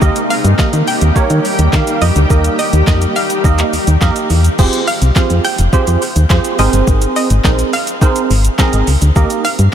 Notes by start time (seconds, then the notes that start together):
Already playing: A#3
0.01 D#2 D#3 G3 A#3 D#4 G4 A#4 D#5, kick, shaker
0.16 closed hi-hat, shaker
0.30 F5, open hi-hat, shaker
0.44 G2, closed hi-hat, shaker
0.59 D#3 A#3 D#4 G4 A#4 D#5 F5, kick, snare, clap, shaker
0.73 D#3, closed hi-hat, shaker
0.87 G5, open hi-hat, shaker
1.01 D#2, closed hi-hat, shaker
1.16 D#3 A#3 D#4 G4 A#4 C#5, kick, shaker
1.30 D#3, closed hi-hat, shaker
1.45 open hi-hat, shaker
1.59 D#2, closed hi-hat, shaker
1.73 D#3 A#3 D#4 G4 A#4 F5, kick, snare, clap, shaker
1.87 closed hi-hat, shaker
2.02 F2 D#5, open hi-hat, shaker
2.16 D2, closed hi-hat, shaker
2.30 D#2 A#3 D#4 G4 A#4 D#5, kick, shaker
2.44 closed hi-hat, shaker
2.59 D#5, open hi-hat, shaker
2.73 D#2, closed hi-hat, shaker
2.87 F2 A#3 D#4 G4 A#4 D#5, kick, snare, clap, shaker
3.02 closed hi-hat, shaker
3.16 F5, open hi-hat, shaker
3.30 closed hi-hat, shaker
3.44 D#2 A#3 D#4 G4 A#4 D#5, kick, shaker
3.58 clap, closed hi-hat, shaker
3.73 D#2, open hi-hat, shaker
3.87 D#2, closed hi-hat, shaker
4.01 F2 A#3 D#4 G4 A#4 D#5, kick, snare, clap, shaker
4.16 closed hi-hat, shaker
4.30 E2, open hi-hat, shaker
4.44 closed hi-hat, shaker
4.59 F1 C4 F4 G4 G#4 C5, kick, crash, shaker
4.73 closed hi-hat, shaker
4.87 F5, open hi-hat, shaker
5.02 C2, closed hi-hat, shaker
5.16 C4 F4 G4 G#4 C5 F5, kick, snare, clap, shaker
5.30 F2, closed hi-hat, shaker
5.45 G5, open hi-hat, shaker
5.58 F1, closed hi-hat, shaker
5.73 F2 C4 F4 G4 G#4 C5, kick, shaker
5.87 F2, closed hi-hat, shaker
6.02 open hi-hat, shaker
6.16 D#2, closed hi-hat, shaker
6.30 F2 C4 F4 G4 G#4 C5, kick, snare, clap, shaker
6.44 closed hi-hat, shaker
6.59 G#1 C4 D#4 G#4 A#4 C5 D#5, open hi-hat, shaker
6.73 G1, closed hi-hat, shaker
6.87 G#1, kick, shaker
7.02 closed hi-hat, shaker
7.16 D#5, open hi-hat, shaker
7.30 G#1, closed hi-hat, shaker
7.44 A#1 C4 D#4 G#4 A#4 C5 D#5, kick, snare, clap, shaker
7.59 closed hi-hat, shaker
7.73 F5, open hi-hat, shaker
7.87 closed hi-hat, shaker
8.01 C4 D#4 G#4 A#4 C5, kick, shaker
8.16 closed hi-hat, shaker
8.30 G#1, open hi-hat, shaker
8.45 closed hi-hat, shaker
8.59 C4 D#4 G#4 A#4 D#5, kick, snare, clap, shaker
8.73 G#1, closed hi-hat, shaker
8.87 C#2, open hi-hat, shaker
9.02 D2, closed hi-hat, shaker
9.16 D#2 A#3 D#4 G4 A#4 D#5, kick, shaker
9.30 closed hi-hat, shaker
9.45 F5, open hi-hat, shaker
9.59 G2, closed hi-hat, shaker